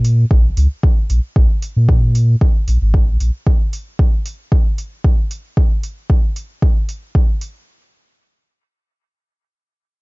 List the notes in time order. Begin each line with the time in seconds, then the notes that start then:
Already playing: A#2
0.05 open hi-hat
0.31 A#1, kick
0.57 C#2, open hi-hat
0.83 kick
1.10 A#1, open hi-hat
1.36 A#1, kick
1.62 open hi-hat
1.76 A#2
1.89 kick
2.15 open hi-hat
2.41 kick
2.68 A#1, open hi-hat
2.82 G#1
2.94 kick
3.08 A#1
3.20 A#1, open hi-hat
3.47 kick
3.73 open hi-hat
3.99 kick
4.26 open hi-hat
4.52 kick
4.78 open hi-hat
5.04 kick
5.31 open hi-hat
5.57 kick
5.83 open hi-hat
6.10 kick
6.36 open hi-hat
6.62 kick
6.89 open hi-hat
7.15 kick
7.41 open hi-hat